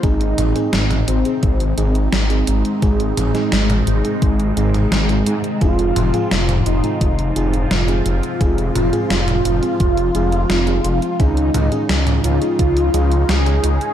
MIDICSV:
0, 0, Header, 1, 6, 480
1, 0, Start_track
1, 0, Tempo, 697674
1, 23, Time_signature, 4, 2, 24, 8
1, 9587, End_track
2, 0, Start_track
2, 0, Title_t, "Analog synth lead"
2, 0, Program_c, 0, 81
2, 22, Note_on_c, 0, 63, 102
2, 647, Note_off_c, 0, 63, 0
2, 743, Note_on_c, 0, 60, 103
2, 1367, Note_off_c, 0, 60, 0
2, 1460, Note_on_c, 0, 56, 105
2, 3862, Note_on_c, 0, 65, 108
2, 3872, Note_off_c, 0, 56, 0
2, 4486, Note_off_c, 0, 65, 0
2, 4585, Note_on_c, 0, 63, 104
2, 5208, Note_off_c, 0, 63, 0
2, 5303, Note_on_c, 0, 65, 112
2, 7704, Note_on_c, 0, 63, 106
2, 7714, Note_off_c, 0, 65, 0
2, 8328, Note_off_c, 0, 63, 0
2, 8426, Note_on_c, 0, 65, 110
2, 9145, Note_on_c, 0, 68, 110
2, 9155, Note_off_c, 0, 65, 0
2, 9587, Note_off_c, 0, 68, 0
2, 9587, End_track
3, 0, Start_track
3, 0, Title_t, "FM electric piano"
3, 0, Program_c, 1, 5
3, 23, Note_on_c, 1, 56, 90
3, 23, Note_on_c, 1, 60, 83
3, 24, Note_on_c, 1, 63, 87
3, 24, Note_on_c, 1, 68, 101
3, 354, Note_off_c, 1, 56, 0
3, 354, Note_off_c, 1, 60, 0
3, 355, Note_off_c, 1, 63, 0
3, 355, Note_off_c, 1, 68, 0
3, 382, Note_on_c, 1, 63, 86
3, 383, Note_on_c, 1, 56, 93
3, 383, Note_on_c, 1, 60, 88
3, 383, Note_on_c, 1, 68, 98
3, 480, Note_off_c, 1, 56, 0
3, 480, Note_off_c, 1, 60, 0
3, 480, Note_off_c, 1, 63, 0
3, 480, Note_off_c, 1, 68, 0
3, 863, Note_on_c, 1, 56, 73
3, 864, Note_on_c, 1, 60, 63
3, 864, Note_on_c, 1, 63, 64
3, 864, Note_on_c, 1, 68, 82
3, 1019, Note_off_c, 1, 56, 0
3, 1019, Note_off_c, 1, 60, 0
3, 1019, Note_off_c, 1, 63, 0
3, 1019, Note_off_c, 1, 68, 0
3, 1223, Note_on_c, 1, 56, 81
3, 1223, Note_on_c, 1, 60, 77
3, 1223, Note_on_c, 1, 63, 77
3, 1223, Note_on_c, 1, 68, 89
3, 1320, Note_off_c, 1, 56, 0
3, 1320, Note_off_c, 1, 63, 0
3, 1320, Note_off_c, 1, 68, 0
3, 1321, Note_off_c, 1, 60, 0
3, 1583, Note_on_c, 1, 63, 71
3, 1583, Note_on_c, 1, 68, 84
3, 1584, Note_on_c, 1, 56, 76
3, 1584, Note_on_c, 1, 60, 74
3, 1739, Note_off_c, 1, 56, 0
3, 1739, Note_off_c, 1, 60, 0
3, 1739, Note_off_c, 1, 63, 0
3, 1739, Note_off_c, 1, 68, 0
3, 1943, Note_on_c, 1, 56, 89
3, 1943, Note_on_c, 1, 63, 84
3, 1943, Note_on_c, 1, 68, 98
3, 1944, Note_on_c, 1, 60, 82
3, 2274, Note_off_c, 1, 56, 0
3, 2274, Note_off_c, 1, 63, 0
3, 2274, Note_off_c, 1, 68, 0
3, 2275, Note_off_c, 1, 60, 0
3, 2303, Note_on_c, 1, 56, 90
3, 2303, Note_on_c, 1, 60, 87
3, 2303, Note_on_c, 1, 63, 88
3, 2303, Note_on_c, 1, 68, 99
3, 2400, Note_off_c, 1, 56, 0
3, 2400, Note_off_c, 1, 68, 0
3, 2401, Note_off_c, 1, 60, 0
3, 2401, Note_off_c, 1, 63, 0
3, 2784, Note_on_c, 1, 56, 69
3, 2784, Note_on_c, 1, 60, 67
3, 2784, Note_on_c, 1, 63, 62
3, 2785, Note_on_c, 1, 68, 75
3, 2939, Note_off_c, 1, 63, 0
3, 2940, Note_off_c, 1, 56, 0
3, 2940, Note_off_c, 1, 60, 0
3, 2940, Note_off_c, 1, 68, 0
3, 3144, Note_on_c, 1, 60, 70
3, 3144, Note_on_c, 1, 63, 71
3, 3144, Note_on_c, 1, 68, 86
3, 3145, Note_on_c, 1, 56, 81
3, 3475, Note_off_c, 1, 56, 0
3, 3475, Note_off_c, 1, 60, 0
3, 3475, Note_off_c, 1, 63, 0
3, 3475, Note_off_c, 1, 68, 0
3, 3504, Note_on_c, 1, 56, 83
3, 3504, Note_on_c, 1, 60, 72
3, 3504, Note_on_c, 1, 63, 76
3, 3504, Note_on_c, 1, 68, 90
3, 3659, Note_off_c, 1, 56, 0
3, 3659, Note_off_c, 1, 60, 0
3, 3659, Note_off_c, 1, 63, 0
3, 3659, Note_off_c, 1, 68, 0
3, 3863, Note_on_c, 1, 56, 89
3, 3863, Note_on_c, 1, 60, 80
3, 3864, Note_on_c, 1, 65, 85
3, 3864, Note_on_c, 1, 68, 101
3, 4194, Note_off_c, 1, 56, 0
3, 4194, Note_off_c, 1, 60, 0
3, 4195, Note_off_c, 1, 65, 0
3, 4195, Note_off_c, 1, 68, 0
3, 4224, Note_on_c, 1, 56, 91
3, 4224, Note_on_c, 1, 60, 84
3, 4224, Note_on_c, 1, 65, 86
3, 4224, Note_on_c, 1, 68, 106
3, 4321, Note_off_c, 1, 56, 0
3, 4321, Note_off_c, 1, 60, 0
3, 4321, Note_off_c, 1, 65, 0
3, 4321, Note_off_c, 1, 68, 0
3, 4703, Note_on_c, 1, 56, 73
3, 4703, Note_on_c, 1, 60, 62
3, 4703, Note_on_c, 1, 65, 64
3, 4704, Note_on_c, 1, 68, 74
3, 4859, Note_off_c, 1, 56, 0
3, 4859, Note_off_c, 1, 60, 0
3, 4859, Note_off_c, 1, 65, 0
3, 4859, Note_off_c, 1, 68, 0
3, 5065, Note_on_c, 1, 56, 83
3, 5065, Note_on_c, 1, 60, 73
3, 5065, Note_on_c, 1, 65, 76
3, 5066, Note_on_c, 1, 68, 94
3, 5161, Note_off_c, 1, 56, 0
3, 5161, Note_off_c, 1, 60, 0
3, 5161, Note_off_c, 1, 65, 0
3, 5162, Note_off_c, 1, 68, 0
3, 5423, Note_on_c, 1, 56, 81
3, 5423, Note_on_c, 1, 60, 70
3, 5423, Note_on_c, 1, 68, 84
3, 5424, Note_on_c, 1, 65, 71
3, 5579, Note_off_c, 1, 56, 0
3, 5579, Note_off_c, 1, 60, 0
3, 5579, Note_off_c, 1, 65, 0
3, 5579, Note_off_c, 1, 68, 0
3, 5783, Note_on_c, 1, 56, 91
3, 5783, Note_on_c, 1, 60, 85
3, 5783, Note_on_c, 1, 65, 85
3, 5783, Note_on_c, 1, 68, 97
3, 6114, Note_off_c, 1, 56, 0
3, 6114, Note_off_c, 1, 60, 0
3, 6114, Note_off_c, 1, 65, 0
3, 6114, Note_off_c, 1, 68, 0
3, 6142, Note_on_c, 1, 65, 83
3, 6143, Note_on_c, 1, 56, 94
3, 6143, Note_on_c, 1, 60, 89
3, 6143, Note_on_c, 1, 68, 105
3, 6240, Note_off_c, 1, 56, 0
3, 6240, Note_off_c, 1, 60, 0
3, 6240, Note_off_c, 1, 65, 0
3, 6240, Note_off_c, 1, 68, 0
3, 6623, Note_on_c, 1, 56, 70
3, 6623, Note_on_c, 1, 65, 65
3, 6624, Note_on_c, 1, 60, 64
3, 6624, Note_on_c, 1, 68, 80
3, 6779, Note_off_c, 1, 56, 0
3, 6779, Note_off_c, 1, 60, 0
3, 6779, Note_off_c, 1, 65, 0
3, 6779, Note_off_c, 1, 68, 0
3, 6984, Note_on_c, 1, 56, 87
3, 6984, Note_on_c, 1, 65, 75
3, 6984, Note_on_c, 1, 68, 90
3, 6985, Note_on_c, 1, 60, 75
3, 7081, Note_off_c, 1, 56, 0
3, 7081, Note_off_c, 1, 60, 0
3, 7081, Note_off_c, 1, 65, 0
3, 7081, Note_off_c, 1, 68, 0
3, 7342, Note_on_c, 1, 56, 79
3, 7342, Note_on_c, 1, 65, 72
3, 7342, Note_on_c, 1, 68, 83
3, 7343, Note_on_c, 1, 60, 71
3, 7498, Note_off_c, 1, 56, 0
3, 7498, Note_off_c, 1, 65, 0
3, 7499, Note_off_c, 1, 60, 0
3, 7499, Note_off_c, 1, 68, 0
3, 7703, Note_on_c, 1, 56, 90
3, 7703, Note_on_c, 1, 61, 84
3, 7703, Note_on_c, 1, 63, 85
3, 7703, Note_on_c, 1, 68, 99
3, 8034, Note_off_c, 1, 56, 0
3, 8034, Note_off_c, 1, 61, 0
3, 8034, Note_off_c, 1, 63, 0
3, 8034, Note_off_c, 1, 68, 0
3, 8061, Note_on_c, 1, 68, 107
3, 8062, Note_on_c, 1, 56, 91
3, 8062, Note_on_c, 1, 61, 89
3, 8062, Note_on_c, 1, 63, 87
3, 8160, Note_off_c, 1, 56, 0
3, 8160, Note_off_c, 1, 61, 0
3, 8160, Note_off_c, 1, 63, 0
3, 8160, Note_off_c, 1, 68, 0
3, 8542, Note_on_c, 1, 56, 72
3, 8542, Note_on_c, 1, 61, 65
3, 8542, Note_on_c, 1, 63, 64
3, 8542, Note_on_c, 1, 68, 75
3, 8698, Note_off_c, 1, 56, 0
3, 8698, Note_off_c, 1, 63, 0
3, 8698, Note_off_c, 1, 68, 0
3, 8699, Note_off_c, 1, 61, 0
3, 8902, Note_on_c, 1, 56, 83
3, 8902, Note_on_c, 1, 61, 77
3, 8902, Note_on_c, 1, 63, 77
3, 8902, Note_on_c, 1, 68, 92
3, 9000, Note_off_c, 1, 56, 0
3, 9000, Note_off_c, 1, 61, 0
3, 9000, Note_off_c, 1, 63, 0
3, 9000, Note_off_c, 1, 68, 0
3, 9261, Note_on_c, 1, 56, 78
3, 9261, Note_on_c, 1, 61, 70
3, 9262, Note_on_c, 1, 63, 72
3, 9262, Note_on_c, 1, 68, 86
3, 9418, Note_off_c, 1, 56, 0
3, 9418, Note_off_c, 1, 61, 0
3, 9418, Note_off_c, 1, 63, 0
3, 9418, Note_off_c, 1, 68, 0
3, 9587, End_track
4, 0, Start_track
4, 0, Title_t, "Analog synth pad"
4, 0, Program_c, 2, 89
4, 22, Note_on_c, 2, 48, 74
4, 23, Note_on_c, 2, 44, 77
4, 23, Note_on_c, 2, 51, 71
4, 23, Note_on_c, 2, 60, 72
4, 23, Note_on_c, 2, 63, 89
4, 3836, Note_off_c, 2, 51, 0
4, 3836, Note_off_c, 2, 63, 0
4, 3863, Note_on_c, 2, 53, 68
4, 3863, Note_on_c, 2, 65, 81
4, 7675, Note_off_c, 2, 48, 0
4, 7676, Note_off_c, 2, 53, 0
4, 7676, Note_off_c, 2, 60, 0
4, 7676, Note_off_c, 2, 65, 0
4, 7704, Note_on_c, 2, 63, 85
4, 7705, Note_on_c, 2, 49, 72
4, 7705, Note_on_c, 2, 61, 73
4, 7706, Note_on_c, 2, 51, 72
4, 9587, Note_off_c, 2, 44, 0
4, 9587, Note_off_c, 2, 49, 0
4, 9587, Note_off_c, 2, 51, 0
4, 9587, Note_off_c, 2, 61, 0
4, 9587, Note_off_c, 2, 63, 0
4, 9587, End_track
5, 0, Start_track
5, 0, Title_t, "Detuned saw bass"
5, 0, Program_c, 3, 39
5, 23, Note_on_c, 3, 32, 95
5, 232, Note_off_c, 3, 32, 0
5, 264, Note_on_c, 3, 32, 86
5, 368, Note_off_c, 3, 32, 0
5, 504, Note_on_c, 3, 32, 84
5, 712, Note_off_c, 3, 32, 0
5, 744, Note_on_c, 3, 32, 91
5, 848, Note_off_c, 3, 32, 0
5, 983, Note_on_c, 3, 32, 85
5, 1192, Note_off_c, 3, 32, 0
5, 1223, Note_on_c, 3, 32, 85
5, 1432, Note_off_c, 3, 32, 0
5, 1463, Note_on_c, 3, 32, 92
5, 1672, Note_off_c, 3, 32, 0
5, 1704, Note_on_c, 3, 32, 98
5, 1808, Note_off_c, 3, 32, 0
5, 1944, Note_on_c, 3, 32, 92
5, 2152, Note_off_c, 3, 32, 0
5, 2185, Note_on_c, 3, 32, 86
5, 2288, Note_off_c, 3, 32, 0
5, 2425, Note_on_c, 3, 32, 79
5, 2633, Note_off_c, 3, 32, 0
5, 2665, Note_on_c, 3, 32, 97
5, 2768, Note_off_c, 3, 32, 0
5, 2904, Note_on_c, 3, 32, 81
5, 3112, Note_off_c, 3, 32, 0
5, 3144, Note_on_c, 3, 32, 87
5, 3352, Note_off_c, 3, 32, 0
5, 3385, Note_on_c, 3, 32, 101
5, 3592, Note_off_c, 3, 32, 0
5, 3624, Note_on_c, 3, 44, 89
5, 3728, Note_off_c, 3, 44, 0
5, 3863, Note_on_c, 3, 29, 98
5, 4072, Note_off_c, 3, 29, 0
5, 4104, Note_on_c, 3, 29, 89
5, 4208, Note_off_c, 3, 29, 0
5, 4345, Note_on_c, 3, 29, 81
5, 4553, Note_off_c, 3, 29, 0
5, 4585, Note_on_c, 3, 29, 94
5, 4688, Note_off_c, 3, 29, 0
5, 4824, Note_on_c, 3, 29, 83
5, 5032, Note_off_c, 3, 29, 0
5, 5065, Note_on_c, 3, 29, 83
5, 5273, Note_off_c, 3, 29, 0
5, 5306, Note_on_c, 3, 29, 89
5, 5513, Note_off_c, 3, 29, 0
5, 5545, Note_on_c, 3, 29, 93
5, 5648, Note_off_c, 3, 29, 0
5, 5784, Note_on_c, 3, 29, 89
5, 5992, Note_off_c, 3, 29, 0
5, 6024, Note_on_c, 3, 29, 84
5, 6128, Note_off_c, 3, 29, 0
5, 6263, Note_on_c, 3, 29, 82
5, 6472, Note_off_c, 3, 29, 0
5, 6503, Note_on_c, 3, 29, 94
5, 6607, Note_off_c, 3, 29, 0
5, 6744, Note_on_c, 3, 29, 81
5, 6952, Note_off_c, 3, 29, 0
5, 6982, Note_on_c, 3, 29, 86
5, 7191, Note_off_c, 3, 29, 0
5, 7222, Note_on_c, 3, 29, 89
5, 7431, Note_off_c, 3, 29, 0
5, 7461, Note_on_c, 3, 29, 93
5, 7566, Note_off_c, 3, 29, 0
5, 7703, Note_on_c, 3, 37, 93
5, 7912, Note_off_c, 3, 37, 0
5, 7943, Note_on_c, 3, 37, 88
5, 8047, Note_off_c, 3, 37, 0
5, 8183, Note_on_c, 3, 37, 85
5, 8392, Note_off_c, 3, 37, 0
5, 8422, Note_on_c, 3, 37, 93
5, 8527, Note_off_c, 3, 37, 0
5, 8662, Note_on_c, 3, 37, 85
5, 8871, Note_off_c, 3, 37, 0
5, 8902, Note_on_c, 3, 37, 86
5, 9111, Note_off_c, 3, 37, 0
5, 9143, Note_on_c, 3, 37, 90
5, 9352, Note_off_c, 3, 37, 0
5, 9382, Note_on_c, 3, 37, 100
5, 9487, Note_off_c, 3, 37, 0
5, 9587, End_track
6, 0, Start_track
6, 0, Title_t, "Drums"
6, 23, Note_on_c, 9, 36, 114
6, 23, Note_on_c, 9, 42, 63
6, 92, Note_off_c, 9, 36, 0
6, 92, Note_off_c, 9, 42, 0
6, 142, Note_on_c, 9, 42, 39
6, 211, Note_off_c, 9, 42, 0
6, 262, Note_on_c, 9, 42, 86
6, 262, Note_on_c, 9, 45, 88
6, 331, Note_off_c, 9, 42, 0
6, 331, Note_off_c, 9, 45, 0
6, 383, Note_on_c, 9, 42, 39
6, 452, Note_off_c, 9, 42, 0
6, 502, Note_on_c, 9, 38, 115
6, 502, Note_on_c, 9, 42, 64
6, 570, Note_off_c, 9, 38, 0
6, 570, Note_off_c, 9, 42, 0
6, 623, Note_on_c, 9, 42, 38
6, 623, Note_on_c, 9, 45, 92
6, 692, Note_off_c, 9, 42, 0
6, 692, Note_off_c, 9, 45, 0
6, 742, Note_on_c, 9, 42, 90
6, 811, Note_off_c, 9, 42, 0
6, 861, Note_on_c, 9, 42, 37
6, 930, Note_off_c, 9, 42, 0
6, 982, Note_on_c, 9, 42, 62
6, 983, Note_on_c, 9, 36, 112
6, 1051, Note_off_c, 9, 42, 0
6, 1052, Note_off_c, 9, 36, 0
6, 1103, Note_on_c, 9, 42, 38
6, 1171, Note_off_c, 9, 42, 0
6, 1222, Note_on_c, 9, 42, 86
6, 1291, Note_off_c, 9, 42, 0
6, 1342, Note_on_c, 9, 42, 37
6, 1411, Note_off_c, 9, 42, 0
6, 1462, Note_on_c, 9, 38, 114
6, 1462, Note_on_c, 9, 42, 62
6, 1531, Note_off_c, 9, 38, 0
6, 1531, Note_off_c, 9, 42, 0
6, 1582, Note_on_c, 9, 42, 38
6, 1651, Note_off_c, 9, 42, 0
6, 1702, Note_on_c, 9, 42, 89
6, 1771, Note_off_c, 9, 42, 0
6, 1823, Note_on_c, 9, 42, 36
6, 1892, Note_off_c, 9, 42, 0
6, 1942, Note_on_c, 9, 42, 60
6, 1943, Note_on_c, 9, 36, 116
6, 2011, Note_off_c, 9, 42, 0
6, 2012, Note_off_c, 9, 36, 0
6, 2063, Note_on_c, 9, 42, 36
6, 2132, Note_off_c, 9, 42, 0
6, 2184, Note_on_c, 9, 42, 91
6, 2184, Note_on_c, 9, 45, 89
6, 2253, Note_off_c, 9, 42, 0
6, 2253, Note_off_c, 9, 45, 0
6, 2302, Note_on_c, 9, 38, 35
6, 2302, Note_on_c, 9, 42, 35
6, 2371, Note_off_c, 9, 38, 0
6, 2371, Note_off_c, 9, 42, 0
6, 2422, Note_on_c, 9, 38, 117
6, 2422, Note_on_c, 9, 42, 59
6, 2491, Note_off_c, 9, 38, 0
6, 2491, Note_off_c, 9, 42, 0
6, 2544, Note_on_c, 9, 42, 39
6, 2544, Note_on_c, 9, 45, 91
6, 2613, Note_off_c, 9, 42, 0
6, 2613, Note_off_c, 9, 45, 0
6, 2663, Note_on_c, 9, 42, 84
6, 2732, Note_off_c, 9, 42, 0
6, 2784, Note_on_c, 9, 42, 38
6, 2853, Note_off_c, 9, 42, 0
6, 2904, Note_on_c, 9, 36, 117
6, 2904, Note_on_c, 9, 42, 64
6, 2973, Note_off_c, 9, 36, 0
6, 2973, Note_off_c, 9, 42, 0
6, 3024, Note_on_c, 9, 42, 35
6, 3093, Note_off_c, 9, 42, 0
6, 3144, Note_on_c, 9, 42, 83
6, 3213, Note_off_c, 9, 42, 0
6, 3264, Note_on_c, 9, 42, 36
6, 3264, Note_on_c, 9, 45, 62
6, 3333, Note_off_c, 9, 42, 0
6, 3333, Note_off_c, 9, 45, 0
6, 3384, Note_on_c, 9, 38, 114
6, 3384, Note_on_c, 9, 42, 61
6, 3453, Note_off_c, 9, 38, 0
6, 3453, Note_off_c, 9, 42, 0
6, 3503, Note_on_c, 9, 42, 35
6, 3572, Note_off_c, 9, 42, 0
6, 3622, Note_on_c, 9, 42, 86
6, 3691, Note_off_c, 9, 42, 0
6, 3743, Note_on_c, 9, 42, 37
6, 3811, Note_off_c, 9, 42, 0
6, 3862, Note_on_c, 9, 42, 59
6, 3863, Note_on_c, 9, 36, 115
6, 3931, Note_off_c, 9, 42, 0
6, 3932, Note_off_c, 9, 36, 0
6, 3983, Note_on_c, 9, 42, 37
6, 4051, Note_off_c, 9, 42, 0
6, 4102, Note_on_c, 9, 42, 81
6, 4102, Note_on_c, 9, 45, 92
6, 4171, Note_off_c, 9, 42, 0
6, 4171, Note_off_c, 9, 45, 0
6, 4223, Note_on_c, 9, 42, 36
6, 4292, Note_off_c, 9, 42, 0
6, 4344, Note_on_c, 9, 38, 109
6, 4344, Note_on_c, 9, 42, 59
6, 4413, Note_off_c, 9, 38, 0
6, 4413, Note_off_c, 9, 42, 0
6, 4464, Note_on_c, 9, 42, 37
6, 4464, Note_on_c, 9, 45, 90
6, 4533, Note_off_c, 9, 42, 0
6, 4533, Note_off_c, 9, 45, 0
6, 4583, Note_on_c, 9, 42, 83
6, 4652, Note_off_c, 9, 42, 0
6, 4704, Note_on_c, 9, 42, 35
6, 4773, Note_off_c, 9, 42, 0
6, 4824, Note_on_c, 9, 36, 111
6, 4824, Note_on_c, 9, 42, 61
6, 4893, Note_off_c, 9, 36, 0
6, 4893, Note_off_c, 9, 42, 0
6, 4945, Note_on_c, 9, 42, 36
6, 5013, Note_off_c, 9, 42, 0
6, 5065, Note_on_c, 9, 42, 84
6, 5133, Note_off_c, 9, 42, 0
6, 5184, Note_on_c, 9, 42, 36
6, 5253, Note_off_c, 9, 42, 0
6, 5304, Note_on_c, 9, 38, 107
6, 5304, Note_on_c, 9, 42, 56
6, 5373, Note_off_c, 9, 38, 0
6, 5373, Note_off_c, 9, 42, 0
6, 5424, Note_on_c, 9, 42, 36
6, 5492, Note_off_c, 9, 42, 0
6, 5543, Note_on_c, 9, 42, 84
6, 5612, Note_off_c, 9, 42, 0
6, 5664, Note_on_c, 9, 42, 34
6, 5733, Note_off_c, 9, 42, 0
6, 5784, Note_on_c, 9, 36, 112
6, 5784, Note_on_c, 9, 42, 60
6, 5853, Note_off_c, 9, 36, 0
6, 5853, Note_off_c, 9, 42, 0
6, 5904, Note_on_c, 9, 42, 36
6, 5973, Note_off_c, 9, 42, 0
6, 6024, Note_on_c, 9, 42, 85
6, 6024, Note_on_c, 9, 45, 88
6, 6092, Note_off_c, 9, 42, 0
6, 6092, Note_off_c, 9, 45, 0
6, 6144, Note_on_c, 9, 42, 37
6, 6213, Note_off_c, 9, 42, 0
6, 6264, Note_on_c, 9, 38, 112
6, 6264, Note_on_c, 9, 42, 59
6, 6332, Note_off_c, 9, 38, 0
6, 6332, Note_off_c, 9, 42, 0
6, 6384, Note_on_c, 9, 42, 36
6, 6384, Note_on_c, 9, 45, 89
6, 6452, Note_off_c, 9, 42, 0
6, 6452, Note_off_c, 9, 45, 0
6, 6503, Note_on_c, 9, 42, 81
6, 6572, Note_off_c, 9, 42, 0
6, 6623, Note_on_c, 9, 42, 35
6, 6692, Note_off_c, 9, 42, 0
6, 6743, Note_on_c, 9, 42, 62
6, 6744, Note_on_c, 9, 36, 108
6, 6811, Note_off_c, 9, 42, 0
6, 6813, Note_off_c, 9, 36, 0
6, 6862, Note_on_c, 9, 42, 34
6, 6931, Note_off_c, 9, 42, 0
6, 6982, Note_on_c, 9, 42, 80
6, 7050, Note_off_c, 9, 42, 0
6, 7103, Note_on_c, 9, 42, 37
6, 7172, Note_off_c, 9, 42, 0
6, 7222, Note_on_c, 9, 38, 106
6, 7222, Note_on_c, 9, 42, 59
6, 7291, Note_off_c, 9, 38, 0
6, 7291, Note_off_c, 9, 42, 0
6, 7341, Note_on_c, 9, 42, 35
6, 7410, Note_off_c, 9, 42, 0
6, 7461, Note_on_c, 9, 42, 84
6, 7530, Note_off_c, 9, 42, 0
6, 7584, Note_on_c, 9, 42, 34
6, 7652, Note_off_c, 9, 42, 0
6, 7704, Note_on_c, 9, 36, 110
6, 7704, Note_on_c, 9, 42, 58
6, 7772, Note_off_c, 9, 36, 0
6, 7772, Note_off_c, 9, 42, 0
6, 7824, Note_on_c, 9, 42, 37
6, 7892, Note_off_c, 9, 42, 0
6, 7942, Note_on_c, 9, 42, 90
6, 7942, Note_on_c, 9, 45, 86
6, 8011, Note_off_c, 9, 42, 0
6, 8011, Note_off_c, 9, 45, 0
6, 8062, Note_on_c, 9, 42, 38
6, 8131, Note_off_c, 9, 42, 0
6, 8183, Note_on_c, 9, 38, 108
6, 8183, Note_on_c, 9, 42, 59
6, 8252, Note_off_c, 9, 38, 0
6, 8252, Note_off_c, 9, 42, 0
6, 8302, Note_on_c, 9, 42, 37
6, 8302, Note_on_c, 9, 45, 89
6, 8371, Note_off_c, 9, 42, 0
6, 8371, Note_off_c, 9, 45, 0
6, 8422, Note_on_c, 9, 42, 85
6, 8491, Note_off_c, 9, 42, 0
6, 8542, Note_on_c, 9, 42, 37
6, 8611, Note_off_c, 9, 42, 0
6, 8663, Note_on_c, 9, 36, 108
6, 8663, Note_on_c, 9, 42, 62
6, 8732, Note_off_c, 9, 36, 0
6, 8732, Note_off_c, 9, 42, 0
6, 8783, Note_on_c, 9, 42, 38
6, 8852, Note_off_c, 9, 42, 0
6, 8903, Note_on_c, 9, 42, 88
6, 8972, Note_off_c, 9, 42, 0
6, 9023, Note_on_c, 9, 42, 36
6, 9092, Note_off_c, 9, 42, 0
6, 9144, Note_on_c, 9, 38, 103
6, 9144, Note_on_c, 9, 42, 60
6, 9213, Note_off_c, 9, 38, 0
6, 9213, Note_off_c, 9, 42, 0
6, 9263, Note_on_c, 9, 42, 36
6, 9332, Note_off_c, 9, 42, 0
6, 9382, Note_on_c, 9, 42, 85
6, 9451, Note_off_c, 9, 42, 0
6, 9502, Note_on_c, 9, 42, 36
6, 9571, Note_off_c, 9, 42, 0
6, 9587, End_track
0, 0, End_of_file